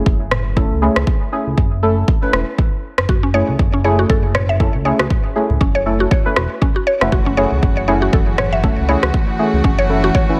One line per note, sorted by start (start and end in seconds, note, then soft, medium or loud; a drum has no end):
0.00 0.54 A3 medium
0.00 0.54 C#4 medium
0.00 0.54 E4 medium
0.00 0.54 G#4 loud
0.06 0.65 F#1 medium
0.06 kick loud
0.31 cross-stick medium
0.31 mid tom medium
0.57 0.79 A3 medium
0.57 0.79 C#4 medium
0.57 0.79 E4 medium
0.57 0.79 A4 medium
0.57 kick loud
0.71 0.89 C#2 medium
0.82 0.98 A3 medium
0.82 0.98 C#4 medium
0.82 0.98 E4 medium
0.82 0.98 G#4 loud
0.96 1.04 C#2 medium
0.96 cross-stick medium
1.07 kick loud
1.32 1.48 A3 medium
1.32 1.48 C#4 medium
1.32 1.48 E4 medium
1.32 1.48 G#4 medium
1.47 1.55 C#2 loud
1.58 2.04 F#1 medium
1.58 kick loud
1.83 1.99 A3 medium
1.83 1.99 C#4 medium
1.83 1.99 E4 medium
1.83 1.99 A4 medium
2.08 kick loud
2.22 2.35 A3 medium
2.22 2.35 C#4 medium
2.22 2.35 E4 medium
2.22 2.35 B4 medium
2.33 2.44 E1 loud
2.33 cross-stick medium
2.58 kick loud
2.98 3.06 F#1 medium
2.98 cross-stick medium
3.09 3.43 F#1 medium
3.09 3.22 F#4 medium
3.09 kick loud
3.23 3.33 C#4 medium
3.34 3.82 A3 medium
3.34 3.82 C#4 medium
3.34 3.82 E4 medium
3.34 3.82 G#4 medium
3.34 3.47 C#5 loud
3.48 3.57 C#2 medium
3.59 4.05 F#1 medium
3.59 kick loud
3.73 3.83 C#4 medium
3.84 4.57 A3 loud
3.84 4.57 C#4 medium
3.84 4.57 E4 medium
3.84 4.57 G#4 loud
3.84 3.98 C#5 medium
3.99 4.05 F#4 medium
4.10 4.69 F#1 medium
4.10 4.22 A4 medium
4.10 kick loud
4.35 4.48 C#5 loud
4.35 cross-stick medium
4.35 mid tom medium
4.49 4.55 E5 medium
4.60 4.82 A3 medium
4.60 4.82 C#4 medium
4.60 4.82 E4 medium
4.60 4.82 A4 medium
4.60 kick loud
4.74 4.93 C#2 medium
4.85 5.01 A3 medium
4.85 5.01 C#4 medium
4.85 5.01 E4 medium
4.85 5.01 G#4 loud
4.85 4.99 C#5 medium
4.99 5.08 C#2 medium
4.99 5.05 F#4 medium
4.99 cross-stick medium
5.10 kick loud
5.10 mid tom medium
5.36 5.52 A3 medium
5.36 5.52 C#4 medium
5.36 5.52 E4 medium
5.36 5.52 G#4 medium
5.50 5.58 C#2 medium
5.50 mid tom medium
5.61 6.07 F#1 medium
5.61 5.74 C#4 medium
5.61 kick loud
5.75 5.85 C#5 loud
5.86 6.02 A3 medium
5.86 6.02 C#4 medium
5.86 6.02 E4 medium
5.86 6.02 A4 medium
6.00 6.06 F#4 medium
6.11 6.25 C#5 medium
6.11 kick loud
6.26 6.39 A3 medium
6.26 6.39 C#4 medium
6.26 6.39 E4 medium
6.26 6.39 B4 medium
6.36 6.47 E1 loud
6.36 6.44 F#4 medium
6.36 cross-stick medium
6.62 6.69 C#4 medium
6.62 kick loud
6.76 6.86 F#4 medium
6.87 7.01 C#5 loud
7.01 7.10 F#1 medium
7.01 7.14 A3 medium
7.01 7.14 C#4 medium
7.01 7.14 E4 medium
7.01 7.14 F#4 medium
7.01 cross-stick medium
7.12 7.46 F#1 medium
7.12 10.40 E3 medium
7.12 10.40 A3 medium
7.12 10.40 F#4 medium
7.12 7.25 F#4 medium
7.12 kick loud
7.26 7.37 C#4 medium
7.37 7.85 A3 medium
7.37 7.85 C#4 medium
7.37 7.85 E4 medium
7.37 7.85 G#4 medium
7.37 7.50 C#5 loud
7.52 7.60 C#2 medium
7.63 8.09 F#1 medium
7.63 kick loud
7.77 7.87 C#5 medium
7.88 8.61 A3 medium
7.88 8.61 C#4 medium
7.88 8.61 E4 medium
7.88 8.61 G#4 loud
7.88 8.01 C#5 medium
8.02 8.08 F#4 medium
8.13 8.72 F#1 medium
8.13 8.26 A4 medium
8.13 kick loud
8.38 8.51 C#5 loud
8.38 cross-stick medium
8.38 mid tom medium
8.53 8.58 E5 medium
8.63 8.85 A3 medium
8.63 8.85 C#4 medium
8.63 8.85 E4 medium
8.63 8.85 A4 medium
8.63 kick loud
8.78 8.96 C#2 medium
8.89 9.05 A3 medium
8.89 9.05 C#4 medium
8.89 9.05 E4 medium
8.89 9.05 G#4 loud
8.89 9.02 C#5 medium
9.03 9.11 C#2 medium
9.03 9.09 F#4 medium
9.03 cross-stick medium
9.14 kick loud
9.39 9.55 A3 medium
9.39 9.55 C#4 medium
9.39 9.55 E4 medium
9.39 9.55 G#4 medium
9.53 9.62 C#2 loud
9.64 10.10 F#1 medium
9.64 9.78 C#4 medium
9.64 kick loud
9.79 9.88 C#5 loud
9.89 10.06 A3 medium
9.89 10.06 C#4 medium
9.89 10.06 E4 medium
9.89 10.06 A4 medium
10.04 10.10 F#4 medium
10.15 10.28 C#5 medium
10.15 kick loud
10.29 10.40 A3 medium
10.29 10.40 C#4 medium
10.29 10.40 E4 medium
10.29 10.40 B4 medium